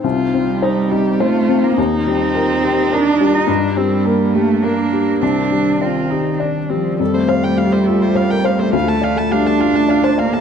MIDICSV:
0, 0, Header, 1, 5, 480
1, 0, Start_track
1, 0, Tempo, 573614
1, 33, Time_signature, 3, 2, 24, 8
1, 3873, Tempo, 592885
1, 5793, Tempo, 579151
1, 8615, End_track
2, 0, Start_track
2, 0, Title_t, "Viola"
2, 0, Program_c, 0, 41
2, 36, Note_on_c, 0, 65, 51
2, 528, Note_on_c, 0, 63, 42
2, 540, Note_off_c, 0, 65, 0
2, 766, Note_on_c, 0, 67, 50
2, 779, Note_off_c, 0, 63, 0
2, 1008, Note_on_c, 0, 65, 56
2, 1021, Note_off_c, 0, 67, 0
2, 1485, Note_off_c, 0, 65, 0
2, 1492, Note_on_c, 0, 63, 65
2, 2887, Note_off_c, 0, 63, 0
2, 2913, Note_on_c, 0, 62, 59
2, 3156, Note_on_c, 0, 60, 55
2, 3169, Note_off_c, 0, 62, 0
2, 3393, Note_on_c, 0, 58, 56
2, 3406, Note_off_c, 0, 60, 0
2, 3868, Note_on_c, 0, 62, 53
2, 3880, Note_off_c, 0, 58, 0
2, 4345, Note_off_c, 0, 62, 0
2, 4349, Note_on_c, 0, 60, 37
2, 4774, Note_off_c, 0, 60, 0
2, 4831, Note_on_c, 0, 65, 46
2, 5068, Note_on_c, 0, 63, 38
2, 5081, Note_off_c, 0, 65, 0
2, 5305, Note_on_c, 0, 62, 37
2, 5318, Note_off_c, 0, 63, 0
2, 5552, Note_on_c, 0, 60, 32
2, 5564, Note_off_c, 0, 62, 0
2, 5786, Note_off_c, 0, 60, 0
2, 5791, Note_on_c, 0, 69, 45
2, 5913, Note_on_c, 0, 72, 42
2, 5925, Note_off_c, 0, 69, 0
2, 6029, Note_on_c, 0, 77, 45
2, 6041, Note_off_c, 0, 72, 0
2, 6159, Note_on_c, 0, 79, 39
2, 6172, Note_off_c, 0, 77, 0
2, 6272, Note_on_c, 0, 77, 44
2, 6285, Note_off_c, 0, 79, 0
2, 6394, Note_on_c, 0, 72, 39
2, 6407, Note_off_c, 0, 77, 0
2, 6509, Note_on_c, 0, 69, 43
2, 6521, Note_off_c, 0, 72, 0
2, 6639, Note_on_c, 0, 72, 42
2, 6652, Note_off_c, 0, 69, 0
2, 6754, Note_on_c, 0, 77, 44
2, 6767, Note_off_c, 0, 72, 0
2, 6873, Note_on_c, 0, 79, 46
2, 6886, Note_off_c, 0, 77, 0
2, 6996, Note_on_c, 0, 77, 40
2, 7008, Note_off_c, 0, 79, 0
2, 7116, Note_on_c, 0, 72, 41
2, 7128, Note_off_c, 0, 77, 0
2, 7230, Note_off_c, 0, 72, 0
2, 7235, Note_on_c, 0, 77, 48
2, 7353, Note_on_c, 0, 81, 45
2, 7366, Note_off_c, 0, 77, 0
2, 7480, Note_on_c, 0, 77, 47
2, 7493, Note_off_c, 0, 81, 0
2, 7595, Note_on_c, 0, 81, 48
2, 7607, Note_off_c, 0, 77, 0
2, 7715, Note_on_c, 0, 77, 46
2, 7727, Note_off_c, 0, 81, 0
2, 7839, Note_on_c, 0, 81, 42
2, 7851, Note_off_c, 0, 77, 0
2, 7955, Note_on_c, 0, 77, 44
2, 7967, Note_off_c, 0, 81, 0
2, 8079, Note_on_c, 0, 81, 43
2, 8091, Note_off_c, 0, 77, 0
2, 8200, Note_on_c, 0, 77, 47
2, 8213, Note_off_c, 0, 81, 0
2, 8313, Note_on_c, 0, 81, 46
2, 8326, Note_off_c, 0, 77, 0
2, 8434, Note_on_c, 0, 77, 43
2, 8447, Note_off_c, 0, 81, 0
2, 8559, Note_on_c, 0, 81, 44
2, 8572, Note_off_c, 0, 77, 0
2, 8615, Note_off_c, 0, 81, 0
2, 8615, End_track
3, 0, Start_track
3, 0, Title_t, "Ambient pad"
3, 0, Program_c, 1, 92
3, 0, Note_on_c, 1, 60, 48
3, 0, Note_on_c, 1, 63, 43
3, 0, Note_on_c, 1, 72, 42
3, 1480, Note_off_c, 1, 63, 0
3, 1481, Note_off_c, 1, 60, 0
3, 1482, Note_off_c, 1, 72, 0
3, 1486, Note_on_c, 1, 70, 49
3, 1489, Note_on_c, 1, 65, 50
3, 1491, Note_on_c, 1, 55, 48
3, 2914, Note_off_c, 1, 65, 0
3, 2918, Note_on_c, 1, 62, 53
3, 4349, Note_off_c, 1, 70, 0
3, 4351, Note_off_c, 1, 62, 0
3, 4357, Note_on_c, 1, 74, 43
3, 4359, Note_on_c, 1, 51, 46
3, 5788, Note_on_c, 1, 57, 54
3, 5788, Note_on_c, 1, 72, 51
3, 5789, Note_on_c, 1, 65, 48
3, 5796, Note_off_c, 1, 55, 0
3, 5797, Note_off_c, 1, 74, 0
3, 5798, Note_off_c, 1, 51, 0
3, 7198, Note_off_c, 1, 72, 0
3, 7234, Note_on_c, 1, 74, 49
3, 8615, Note_off_c, 1, 57, 0
3, 8615, Note_off_c, 1, 65, 0
3, 8615, Note_off_c, 1, 74, 0
3, 8615, End_track
4, 0, Start_track
4, 0, Title_t, "Upright piano"
4, 0, Program_c, 2, 0
4, 0, Control_c, 2, 64, 127
4, 33, Note_on_c, 2, 36, 42
4, 48, Control_c, 2, 64, 0
4, 191, Control_c, 2, 64, 127
4, 284, Note_on_c, 2, 60, 38
4, 522, Note_on_c, 2, 72, 40
4, 668, Note_off_c, 2, 60, 0
4, 769, Note_on_c, 2, 63, 38
4, 907, Note_off_c, 2, 72, 0
4, 1007, Note_on_c, 2, 72, 41
4, 1151, Note_off_c, 2, 63, 0
4, 1245, Note_on_c, 2, 60, 39
4, 1389, Note_off_c, 2, 72, 0
4, 1449, Note_off_c, 2, 36, 0
4, 1484, Note_off_c, 2, 60, 0
4, 1486, Note_on_c, 2, 39, 54
4, 1497, Control_c, 2, 64, 0
4, 1643, Control_c, 2, 64, 127
4, 1733, Note_on_c, 2, 55, 42
4, 1967, Note_on_c, 2, 70, 43
4, 2110, Note_off_c, 2, 55, 0
4, 2205, Note_on_c, 2, 67, 45
4, 2344, Note_off_c, 2, 70, 0
4, 2443, Note_on_c, 2, 70, 43
4, 2581, Note_off_c, 2, 67, 0
4, 2682, Note_on_c, 2, 55, 44
4, 2819, Note_off_c, 2, 70, 0
4, 2879, Note_off_c, 2, 39, 0
4, 2907, Note_on_c, 2, 43, 59
4, 2915, Note_off_c, 2, 55, 0
4, 2927, Control_c, 2, 64, 0
4, 3057, Control_c, 2, 64, 127
4, 3155, Note_on_c, 2, 55, 39
4, 3395, Note_on_c, 2, 70, 43
4, 3538, Note_off_c, 2, 55, 0
4, 3643, Note_on_c, 2, 67, 40
4, 3779, Note_off_c, 2, 70, 0
4, 3882, Note_on_c, 2, 70, 33
4, 4019, Note_off_c, 2, 67, 0
4, 4115, Note_on_c, 2, 55, 30
4, 4256, Note_off_c, 2, 70, 0
4, 4313, Note_off_c, 2, 43, 0
4, 4351, Note_off_c, 2, 55, 0
4, 4354, Note_on_c, 2, 36, 43
4, 4365, Control_c, 2, 64, 0
4, 4478, Control_c, 2, 64, 127
4, 4595, Note_on_c, 2, 55, 27
4, 4835, Note_on_c, 2, 74, 30
4, 4978, Note_off_c, 2, 55, 0
4, 5077, Note_on_c, 2, 67, 28
4, 5217, Note_off_c, 2, 74, 0
4, 5306, Note_on_c, 2, 74, 29
4, 5458, Note_off_c, 2, 67, 0
4, 5551, Note_on_c, 2, 55, 28
4, 5694, Note_off_c, 2, 74, 0
4, 5763, Note_off_c, 2, 36, 0
4, 5786, Note_on_c, 2, 41, 47
4, 5792, Note_off_c, 2, 55, 0
4, 5809, Control_c, 2, 64, 0
4, 5909, Note_on_c, 2, 57, 33
4, 5928, Control_c, 2, 64, 127
4, 6030, Note_on_c, 2, 72, 38
4, 6105, Note_off_c, 2, 57, 0
4, 6152, Note_on_c, 2, 57, 34
4, 6225, Note_off_c, 2, 72, 0
4, 6273, Note_on_c, 2, 55, 32
4, 6346, Note_off_c, 2, 57, 0
4, 6392, Note_on_c, 2, 57, 33
4, 6395, Note_off_c, 2, 55, 0
4, 6517, Note_on_c, 2, 65, 36
4, 6586, Note_off_c, 2, 57, 0
4, 6631, Note_on_c, 2, 57, 37
4, 6708, Note_off_c, 2, 65, 0
4, 6749, Note_on_c, 2, 72, 36
4, 6825, Note_off_c, 2, 57, 0
4, 6871, Note_on_c, 2, 70, 35
4, 6943, Note_off_c, 2, 72, 0
4, 6991, Note_on_c, 2, 72, 38
4, 6992, Note_off_c, 2, 70, 0
4, 7112, Note_on_c, 2, 57, 39
4, 7184, Note_off_c, 2, 72, 0
4, 7197, Note_off_c, 2, 41, 0
4, 7225, Note_on_c, 2, 38, 48
4, 7232, Note_off_c, 2, 57, 0
4, 7249, Control_c, 2, 64, 0
4, 7344, Note_on_c, 2, 57, 37
4, 7381, Control_c, 2, 64, 127
4, 7463, Note_on_c, 2, 74, 37
4, 7545, Note_off_c, 2, 57, 0
4, 7584, Note_on_c, 2, 57, 36
4, 7665, Note_off_c, 2, 74, 0
4, 7709, Note_on_c, 2, 55, 36
4, 7785, Note_off_c, 2, 57, 0
4, 7825, Note_on_c, 2, 57, 34
4, 7835, Note_off_c, 2, 55, 0
4, 7942, Note_on_c, 2, 65, 35
4, 8024, Note_off_c, 2, 57, 0
4, 8063, Note_on_c, 2, 57, 38
4, 8141, Note_off_c, 2, 65, 0
4, 8183, Note_on_c, 2, 74, 39
4, 8261, Note_off_c, 2, 57, 0
4, 8311, Note_on_c, 2, 72, 39
4, 8380, Note_off_c, 2, 74, 0
4, 8427, Note_on_c, 2, 74, 41
4, 8432, Note_off_c, 2, 72, 0
4, 8548, Note_on_c, 2, 57, 39
4, 8615, Note_off_c, 2, 38, 0
4, 8615, Note_off_c, 2, 57, 0
4, 8615, Note_off_c, 2, 74, 0
4, 8615, End_track
5, 0, Start_track
5, 0, Title_t, "Cello"
5, 0, Program_c, 3, 42
5, 280, Note_on_c, 3, 55, 59
5, 1011, Note_on_c, 3, 57, 69
5, 1024, Note_off_c, 3, 55, 0
5, 1370, Note_on_c, 3, 58, 61
5, 1382, Note_off_c, 3, 57, 0
5, 1486, Note_off_c, 3, 58, 0
5, 1729, Note_on_c, 3, 60, 75
5, 2453, Note_on_c, 3, 62, 79
5, 2466, Note_off_c, 3, 60, 0
5, 2804, Note_on_c, 3, 63, 70
5, 2817, Note_off_c, 3, 62, 0
5, 2917, Note_off_c, 3, 63, 0
5, 3155, Note_on_c, 3, 55, 66
5, 3631, Note_on_c, 3, 57, 68
5, 3643, Note_off_c, 3, 55, 0
5, 3872, Note_on_c, 3, 58, 66
5, 3885, Note_off_c, 3, 57, 0
5, 4345, Note_on_c, 3, 62, 59
5, 4358, Note_off_c, 3, 58, 0
5, 4833, Note_on_c, 3, 60, 46
5, 4845, Note_off_c, 3, 62, 0
5, 5312, Note_off_c, 3, 60, 0
5, 5552, Note_on_c, 3, 53, 46
5, 5793, Note_on_c, 3, 55, 64
5, 5805, Note_off_c, 3, 53, 0
5, 7223, Note_on_c, 3, 57, 70
5, 7236, Note_off_c, 3, 55, 0
5, 7714, Note_on_c, 3, 62, 69
5, 7727, Note_off_c, 3, 57, 0
5, 8432, Note_off_c, 3, 62, 0
5, 8439, Note_on_c, 3, 58, 68
5, 8615, Note_off_c, 3, 58, 0
5, 8615, End_track
0, 0, End_of_file